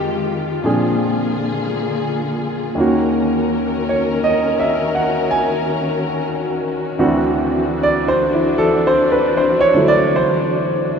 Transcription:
Already playing: F2 D#3 F3 G#3 D#4 F4 G4
0.64 A#2 D3 F3 A#3 C4 D4 G#4
2.75 D#2 D#3 A#3 F#4
2.79 D#3 C#4 F#4 A#4
3.89 C#5
4.24 D#5
4.60 E5
4.95 F#5
5.31 G#5
6.98 D2 D3 E3 C4 D4 F#4
7.83 D5
8.08 C5
8.34 E4
8.58 A4
8.87 C5
9.12 B4
9.37 C5
9.61 C#5
9.74 D3 F#3 A3 E4
9.88 D5
10.16 C5

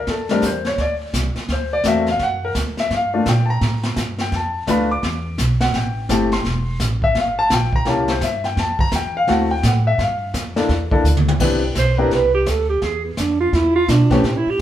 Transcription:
0.07 F2 A4, brush sweep, kick, snare
0.29 G3 A3 C4 D4 A#4, snare
0.42 E2, kick, snare, hi-hat pedal
0.46 C5
0.65 C#5, snare
0.78 D2 D5, brush sweep, kick, snare
1.13 C2, kick, snare, hi-hat pedal
1.36 muted upright bass stroke, snare
1.48 D2, brush sweep, kick, snare
1.52 C5
1.73 D5
1.84 E2 A3 A#3 C4 F#4, kick, snare, hi-hat pedal
1.88 E5
2.06 F5, snare
2.19 F#2 F#5, brush sweep, kick, snare
2.45 A#4
2.55 D2, kick, snare, hi-hat pedal
2.77 E5, snare
2.90 G2, brush sweep, kick, snare
2.95 F5
3.14 A3 A#3 D4 F4
3.26 A#2 G5, kick, snare, hi-hat pedal
3.46 A5
3.50 A#5
3.61 A2, brush sweep, kick, snare
3.83 snare
3.96 G2, kick, snare, hi-hat pedal
4.18 G5, snare
4.32 F2, brush sweep, kick, snare
4.36 A5
4.67 D2 A3 B3 D4 F4 B5, kick, snare, hi-hat pedal
4.91 D6
5.02 E2, brush sweep, kick, snare
5.38 B1, kick, snare, hi-hat pedal
5.61 F#5, snare
5.73 A1 G5, brush sweep, kick, snare
6.09 G1 A3 C4 E4 G4 A5, kick, snare, hi-hat pedal
6.32 C6, snare
6.44 E1, brush sweep, kick, snare
6.79 A1, kick, snare, hi-hat pedal
7.02 E5, kick
7.15 G1 F5, brush sweep, kick, snare
7.39 A5
7.50 A#1 G5, kick, snare, hi-hat pedal
7.73 A#5, kick
7.85 C2 A#3 C#4 E4 G4, brush sweep, kick, snare
7.89 A5
8.08 C5, snare
8.21 G2 E5, kick, snare, hi-hat pedal
8.44 G5, snare
8.56 F2 A5, brush sweep, kick, snare
8.79 A#5, kick
8.92 E2 G5, kick, snare, hi-hat pedal
9.17 F5
9.27 D2 A3 C4 E4 F#4 F#5, brush sweep, kick, snare
9.51 G5
9.63 A2 F#5, kick, snare, hi-hat pedal
9.87 E5
9.98 G2 F5, brush sweep, kick, snare
10.34 F2, kick, snare, hi-hat pedal
10.56 A#3 D4 E4 A4, snare
10.69 E2, brush sweep, kick, snare
10.91 A#3 D4 E4 A4, kick
11.04 D2, hi-hat pedal, mid tom
11.17 mid tom
11.28 mid tom
11.39 C2 B3 C4 D4 E4 G4, brush sweep, kick, snare, crash
11.75 B1 C5, kick, snare, hi-hat pedal
11.98 B3 C4 D4 E4 G4 A#4
12.11 C2 B4, brush sweep, kick, snare
12.34 G4
12.46 D2 A4, kick, snare, hi-hat pedal
12.69 G4
12.82 E2 G#4, brush sweep, kick, snare
13.05 B3
13.17 F2 D4, kick, snare, hi-hat pedal
13.40 F4
13.52 E2 E4, brush sweep, kick, snare
13.75 F4
13.88 B2 D4, kick, snare, hi-hat pedal
14.10 A3 B3 C4 C#4 E4 G4, kick, snare
14.23 A2 C4, brush sweep, kick, snare
14.37 E4
14.46 G4, muted upright bass stroke

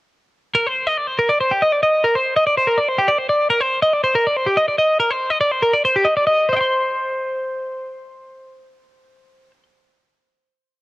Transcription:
0.55 A#4
0.67 C5
0.87 D#5
0.97 D5
1.07 C5
1.19 A#4
1.29 D5
1.41 C5
1.51 G4
1.62 D#5
1.72 D5
1.83 D#5
2.04 A#4
2.15 C5
2.36 D#5
2.47 D5
2.57 C5
2.67 A#4
2.78 D5
2.88 C5
2.98 G4
3.08 D5
3.18 C5
3.29 D5
3.50 A#4
3.61 C5
3.83 D#5
3.94 D5
4.04 C5
4.15 A#4
4.27 D5
4.37 C5
4.47 G4
4.57 D#5
4.68 D5
4.79 D#5
5.00 A#4
5.11 C5
5.30 D#5
5.41 D5
5.52 C5
5.63 A#4
5.73 D5
5.85 C5
5.96 G4
6.05 D#5
6.17 D5
6.27 D#5
6.49 C5 D#5
6.56 G5
6.61 C6

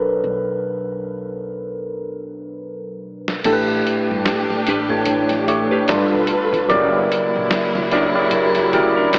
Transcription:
Already playing: B1 B2 F#3 D4 A4 A#4 B4
0.24 B1
3.28 snare
3.44 A1 A2 A3 D4 G4 A4, kick, closed hi-hat, crash
3.53 B4
3.87 closed hi-hat
4.11 G1
4.26 muted hollow-body jazz guitar stroke, snare, clap, closed hi-hat
4.50 muted upright bass stroke, snare
4.67 A1 D4 G4 B4, closed hi-hat
4.89 A2 A3 D4 G4 C#5, kick
5.06 kick, closed hi-hat
5.29 snare, closed hi-hat
5.47 A2 A3 D4 G4 C#5, closed hi-hat
5.71 D4 G4 B4
5.87 G1 G3 D4 F4 A4 A#4 B4, snare, clap, closed hi-hat
5.96 B4
6.14 B1
6.27 closed hi-hat
6.53 F1, kick, closed hi-hat
6.68 F#1 C#3 F#3 A#3 E4 G4 A#4 D5, kick, closed hi-hat
7.12 closed hi-hat
7.36 A#1
7.51 muted hollow-body jazz guitar stroke, muted upright bass stroke, snare, clap, closed hi-hat
7.75 C#2, snare
7.91 F#3 C#4 D4 E4 G4 A#4 D5, closed hi-hat
8.14 C#3 F#3 E4 G4 A#4 D5
8.31 kick, closed hi-hat
8.55 snare, closed hi-hat
8.73 D2 C#3 F#3 E4 G4 A#4 D5, kick, closed hi-hat
8.97 D4 E4 A#4
9.13 snare, clap, closed hi-hat

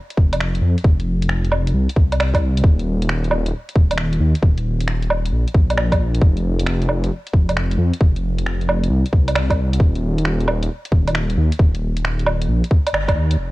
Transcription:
0.10 closed hi-hat
0.17 F1, kick
0.33 closed hi-hat, low woodblock
0.40 finger snap
0.55 closed hi-hat
0.62 F2
0.78 closed hi-hat
0.84 F1, kick
1.00 closed hi-hat
1.22 closed hi-hat
1.29 finger snap
1.45 closed hi-hat
1.52 low woodblock
1.67 closed hi-hat
1.74 C2
1.89 closed hi-hat
1.96 C2, kick
2.12 closed hi-hat, low woodblock
2.20 finger snap, low woodblock
2.34 kick, closed hi-hat, low woodblock
2.57 closed hi-hat
2.64 D#1, kick
2.79 closed hi-hat
3.02 closed hi-hat
3.09 finger snap
3.24 closed hi-hat
3.31 low woodblock
3.46 closed hi-hat
3.69 closed hi-hat
3.76 D#1, kick
3.91 closed hi-hat, low woodblock
3.98 finger snap
4.13 closed hi-hat
4.20 D#2
4.35 closed hi-hat
4.42 D#1, kick
4.58 closed hi-hat
4.80 closed hi-hat
4.88 finger snap
5.02 closed hi-hat
5.10 low woodblock
5.26 closed hi-hat
5.32 A#1
5.48 closed hi-hat
5.54 A#1, kick
5.70 closed hi-hat, low woodblock
5.78 finger snap, low woodblock
5.92 kick, closed hi-hat, low woodblock
6.15 closed hi-hat
6.22 F1, kick
6.37 closed hi-hat
6.60 closed hi-hat
6.67 finger snap
6.82 closed hi-hat
6.89 low woodblock
7.04 closed hi-hat
7.27 closed hi-hat
7.33 F1, kick
7.49 closed hi-hat, low woodblock
7.57 finger snap
7.71 closed hi-hat
7.78 F2
7.94 closed hi-hat
8.01 F1, kick
8.16 closed hi-hat
8.39 closed hi-hat
8.46 finger snap
8.61 closed hi-hat
8.69 low woodblock
8.84 closed hi-hat
8.90 C2
9.06 closed hi-hat
9.12 C2, kick
9.28 closed hi-hat, low woodblock
9.35 finger snap, low woodblock
9.50 kick, closed hi-hat, low woodblock
9.73 closed hi-hat
9.79 D#1, kick
9.95 closed hi-hat
10.18 closed hi-hat
10.25 finger snap
10.40 closed hi-hat
10.48 low woodblock
10.63 closed hi-hat
10.85 closed hi-hat
10.92 D#1, kick
11.07 closed hi-hat, low woodblock
11.15 finger snap
11.30 closed hi-hat
11.37 D#2
11.52 closed hi-hat
11.59 D#1, kick
11.74 closed hi-hat
11.96 closed hi-hat
12.05 finger snap
12.19 closed hi-hat
12.26 low woodblock
12.42 closed hi-hat
12.48 A#1
12.64 closed hi-hat
12.71 kick
12.87 closed hi-hat, low woodblock
12.93 G1, finger snap, low woodblock
13.08 kick, closed hi-hat, low woodblock
13.15 D#2
13.31 closed hi-hat
13.38 F1

